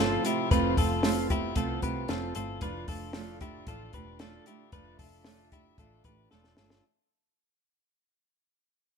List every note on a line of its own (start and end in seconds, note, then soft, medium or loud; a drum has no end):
0.00 0.17 G1 medium
0.00 6.78 A2 medium
0.00 2.57 C3 medium
0.00 0.24 F3 medium
0.00 6.78 F3 medium
0.00 0.24 A3 medium
0.00 0.23 C4 medium
0.00 0.48 C4 medium
0.00 0.22 F4 medium
0.00 0.25 F4 medium
0.00 2.57 F4 medium
0.00 0.25 A4 medium
0.23 0.50 A3 soft
0.23 0.51 C4 soft
0.23 0.51 E4 medium
0.23 0.50 F4 medium
0.23 0.51 G4 medium
0.23 hi-hat pedal medium
0.23 open hi-hat medium
0.51 0.73 F1 loud
0.51 0.77 F3 medium
0.51 0.77 A3 medium
0.51 2.59 B3 medium
0.51 0.77 C4 loud
0.51 0.77 F4 medium
0.51 0.76 F4 medium
0.51 0.77 B4 medium
0.51 kick loud
0.51 hi-hat pedal medium
0.51 open hi-hat medium
0.77 1.53 F1 loud
0.77 1.03 A3 medium
0.77 1.04 C4 medium
0.77 1.03 F4 medium
0.77 1.27 F4 medium
0.77 1.27 A4 medium
0.77 kick medium
0.77 hi-hat pedal medium
0.77 open hi-hat medium
1.03 1.30 F3 medium
1.03 1.30 A3 medium
1.03 1.29 C4 medium
1.03 1.28 F4 medium
1.03 snare loud
1.03 hi-hat pedal medium
1.03 open hi-hat medium
1.30 1.55 A3 soft
1.30 1.56 C4 medium
1.30 1.56 E4 medium
1.30 1.56 F4 medium
1.30 1.56 G4 medium
1.30 kick medium
1.30 hi-hat pedal medium
1.30 open hi-hat medium
1.55 1.79 C2 loud
1.55 1.82 F3 medium
1.55 1.82 A3 medium
1.55 1.82 C4 medium
1.55 1.83 F4 medium
1.55 1.80 F4 medium
1.55 1.82 A4 medium
1.55 kick loud
1.55 hi-hat pedal medium
1.55 open hi-hat loud
1.82 2.05 C2 medium
1.82 2.07 A3 soft
1.82 2.08 C4 medium
1.82 2.08 F4 medium
1.82 2.09 G4 medium
1.82 2.09 B4 medium
1.82 kick medium
1.82 hi-hat pedal medium
1.82 open hi-hat medium
2.08 2.32 F1 medium
2.08 2.35 F3 medium
2.08 2.35 A3 medium
2.08 2.35 C4 medium
2.08 2.34 F4 loud
2.08 2.35 F4 medium
2.08 2.34 A4 medium
2.08 snare loud
2.08 hi-hat pedal medium
2.08 open hi-hat medium
2.35 2.58 G1 loud
2.35 2.61 A3 medium
2.35 2.62 C4 medium
2.35 2.61 F4 medium
2.35 2.62 F4 medium
2.35 2.62 A4 medium
2.35 hi-hat pedal medium
2.35 open hi-hat medium
2.61 2.84 F1 loud
2.61 6.79 D3 medium
2.61 2.88 F3 loud
2.61 2.88 A3 loud
2.61 6.79 D4 medium
2.61 2.88 D4 medium
2.61 4.71 F4 medium
2.61 2.88 F4 medium
2.61 2.87 F4 loud
2.61 2.88 B4 medium
2.61 kick loud
2.61 hi-hat pedal medium
2.61 open hi-hat medium
2.88 3.63 F1 loud
2.88 3.14 A3 soft
2.88 3.15 D4 soft
2.88 3.14 F4 medium
2.88 3.38 F4 medium
2.88 3.38 A4 medium
2.88 kick medium
2.88 hi-hat pedal medium
2.88 open hi-hat medium
3.13 3.41 F3 medium
3.13 3.41 A3 medium
3.13 3.41 D4 medium
3.13 3.40 F4 loud
3.13 snare loud
3.13 hi-hat pedal medium
3.13 open hi-hat medium
3.41 3.66 A3 soft
3.41 3.67 D4 medium
3.41 3.68 E4 medium
3.41 3.67 F4 medium
3.41 3.67 G4 medium
3.41 kick medium
3.41 hi-hat pedal medium
3.41 open hi-hat medium
3.67 3.89 A1 loud
3.67 3.93 F3 medium
3.67 3.94 A3 medium
3.67 3.93 D4 medium
3.67 3.94 F4 medium
3.67 3.92 F4 medium
3.67 3.94 A4 medium
3.67 kick loud
3.67 hi-hat pedal medium
3.67 open hi-hat medium
3.93 4.38 E1 medium
3.93 4.19 A3 soft
3.93 4.20 D4 medium
3.93 4.20 F4 medium
3.93 4.20 G4 medium
3.93 4.20 B4 medium
3.93 kick medium
3.93 hi-hat pedal medium
3.93 open hi-hat medium
4.19 4.46 F3 medium
4.19 4.46 A3 medium
4.19 4.47 D4 loud
4.19 4.46 F4 medium
4.19 4.46 A4 medium
4.19 snare loud
4.19 hi-hat pedal medium
4.19 open hi-hat medium
4.46 4.72 A3 medium
4.46 4.72 D4 medium
4.46 4.73 E4 medium
4.46 4.73 F4 medium
4.46 4.73 G4 medium
4.46 hi-hat pedal medium
4.46 open hi-hat medium
4.72 4.95 F1 medium
4.72 4.99 F3 medium
4.72 4.99 A3 medium
4.72 4.99 D4 medium
4.72 4.99 F4 medium
4.72 4.99 B4 loud
4.72 6.81 E5 medium
4.72 kick loud
4.72 hi-hat pedal medium
4.72 open hi-hat medium
4.99 5.74 F1 medium
4.99 5.25 A3 soft
4.99 5.26 D4 soft
4.99 5.26 F4 medium
4.99 5.49 F4 medium
4.99 5.49 A4 medium
4.99 kick medium
4.99 hi-hat pedal medium
4.99 open hi-hat medium
5.24 5.52 F3 medium
5.24 5.52 A3 medium
5.24 5.52 D4 medium
5.24 5.52 F4 loud
5.24 snare loud
5.24 hi-hat pedal medium
5.24 open hi-hat medium
5.52 5.78 A3 soft
5.52 5.79 D4 soft
5.52 5.79 E4 medium
5.52 5.78 F4 medium
5.52 5.78 G4 medium
5.52 kick medium
5.52 hi-hat pedal medium
5.52 open hi-hat medium
5.78 6.00 A1 medium
5.78 6.04 F3 medium
5.78 6.05 A3 medium
5.78 6.05 D4 medium
5.78 6.05 F4 medium
5.78 6.04 F4 medium
5.78 6.04 A4 medium
5.78 kick loud
5.78 hi-hat pedal medium
5.78 open hi-hat medium
6.04 6.27 A1 medium
6.04 6.31 A3 soft
6.04 6.32 D4 medium
6.04 6.31 F4 medium
6.04 6.31 G4 medium
6.04 6.31 B4 medium
6.04 kick medium
6.04 hi-hat pedal medium
6.04 open hi-hat medium
6.31 6.54 E1 medium
6.31 6.57 F3 medium
6.31 6.58 A3 medium
6.31 6.58 D4 loud
6.31 6.58 F4 medium
6.31 6.57 F4 medium
6.31 6.57 A4 medium
6.31 snare medium
6.44 snare medium
6.57 6.80 G1 medium
6.57 6.85 A3 soft
6.57 6.84 D4 soft
6.57 6.84 F4 medium
6.57 6.84 A4 medium
6.57 snare loud
6.70 snare medium